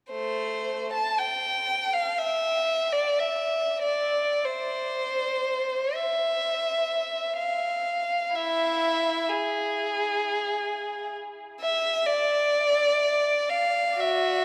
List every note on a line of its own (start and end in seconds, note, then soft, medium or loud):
0.12 0.89 A3 soft
0.12 0.89 C5 soft
0.93 1.19 A5 soft
1.18 1.93 G5 soft
1.93 2.18 F5 soft
2.19 2.93 E5 medium
2.92 3.19 D5 medium
3.19 3.83 E5 soft
3.83 4.41 D5 soft
4.45 5.95 C5 soft
5.95 7.37 E5 medium
7.37 8.32 F5 soft
8.35 9.26 E4 soft
8.35 9.30 E5 medium
9.29 11.15 G#4 medium
11.61 12.05 E5 medium
12.06 13.50 D5 medium
13.50 14.00 F5 medium
14.00 14.45 F#4 medium
14.00 14.45 E5 medium